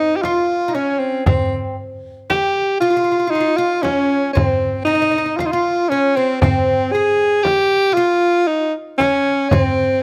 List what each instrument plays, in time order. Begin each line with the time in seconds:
Already playing: alto saxophone D#4, oud D#4
0.16 alto saxophone G4
0.22 alto saxophone F4, oud F4, darbuka tek, frame drum
0.68 oud D#4
0.74 alto saxophone C#4, oud C#4, darbuka ka
0.99 alto saxophone C4
1.26 alto saxophone C4, oud C4, frame drum, darbuka dum
2.30 oud G4, alto saxophone G4, darbuka tek, frame drum
2.80 alto saxophone F4, oud F4
2.90 oud F4
2.97 oud F4
3.04 oud F4
3.12 oud F4
3.19 oud F4
3.27 alto saxophone D#4, oud F4
3.35 oud F4
3.40 oud F4
3.57 alto saxophone F4, oud F4
3.82 alto saxophone C#4, oud C#4, darbuka tek, frame drum
4.33 alto saxophone C4, oud C4, darbuka dum, frame drum
4.85 alto saxophone D#4, oud D#4
4.95 oud D#4
5.02 oud D#4
5.11 oud D#4
5.18 oud D#4
5.26 oud D#4
5.36 alto saxophone F4, oud F4, darbuka tek, frame drum
5.46 alto saxophone D#4
5.51 alto saxophone F4, oud F4
5.89 alto saxophone C#4, oud C#4, darbuka ka
6.16 alto saxophone C4, oud C4
6.41 alto saxophone C4, oud C4, frame drum, darbuka dum
6.92 alto saxophone G#4, oud G#4
7.43 alto saxophone G4, darbuka tek, frame drum
7.92 alto saxophone F4, oud G4
7.97 oud F4
8.47 alto saxophone D#4
8.98 alto saxophone C#4, oud C#4, darbuka tek, frame drum
9.49 oud C4, alto saxophone C#4, frame drum, darbuka dum
9.60 alto saxophone C4